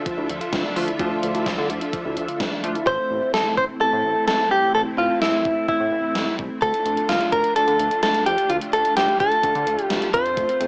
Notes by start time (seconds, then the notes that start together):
Already playing: D3 D4 F4 A4 E5
0.06 F3, kick, closed hi-hat
0.18 D2 E4
0.29 D2 F3, closed hi-hat
0.41 F4, closed hi-hat
0.53 D2 F3, kick, snare, closed hi-hat
0.64 D4
0.76 D2 F3 A3 D4 F4, open hi-hat
0.88 E4, closed hi-hat
1.00 D2 F3 A3 D4 F4, kick, closed hi-hat
1.11 D4
1.23 D2 F3, closed hi-hat
1.35 D2 E4, closed hi-hat
1.46 D2 F3, kick, snare, closed hi-hat
1.58 D3 F4
1.70 D2 F3, closed hi-hat
1.81 D4, closed hi-hat
1.93 F3, kick, closed hi-hat
2.05 D2 E4
2.17 D2 F3, closed hi-hat
2.28 F4, closed hi-hat
2.40 D2 F3, kick, snare, closed hi-hat
2.52 D4
2.64 D2 F3 A3 D4 F4, closed hi-hat
2.75 E4, closed hi-hat
2.87 A1 A3 C4 E4 C5, kick
3.11 A1
3.34 A1 A4, snare
3.58 A1 C5, kick
3.81 A1 A4
3.93 A2
4.04 A1
4.28 A1 A4, snare
4.51 C2 G4
4.75 A1 A4
4.98 A1 F4
5.21 A1 E4, snare
5.45 A1, kick
5.68 A1 E4, kick
5.80 A2
5.92 A1
6.15 A1, snare
6.39 C2, kick
6.62 D2 A3 D4 F4 A4, kick, closed hi-hat
6.74 closed hi-hat
6.86 D2, closed hi-hat
6.97 closed hi-hat
7.09 D2 F4, snare, closed hi-hat
7.21 closed hi-hat
7.32 D2 A#4, kick, closed hi-hat
7.44 closed hi-hat
7.56 D2 A4, closed hi-hat
7.68 D3, closed hi-hat
7.79 D2, closed hi-hat
7.91 closed hi-hat
8.03 D2 A4, snare, closed hi-hat
8.14 closed hi-hat
8.26 F2 G4, closed hi-hat
8.38 closed hi-hat
8.50 D2 F4, closed hi-hat
8.61 closed hi-hat
8.73 D2 A4, closed hi-hat
8.85 closed hi-hat
8.97 D2 G4, snare, closed hi-hat
9.08 closed hi-hat
9.20 D2 A4, kick, closed hi-hat
9.32 closed hi-hat
9.43 D2, kick, closed hi-hat
9.55 D3, closed hi-hat
9.67 D2, closed hi-hat
9.79 closed hi-hat
9.84 G4
9.90 D2, snare, closed hi-hat
10.02 closed hi-hat
10.14 F2 C4 C5, kick, closed hi-hat
10.26 closed hi-hat
10.37 A3, kick, closed hi-hat
10.49 C4, closed hi-hat
10.61 F2 A3, closed hi-hat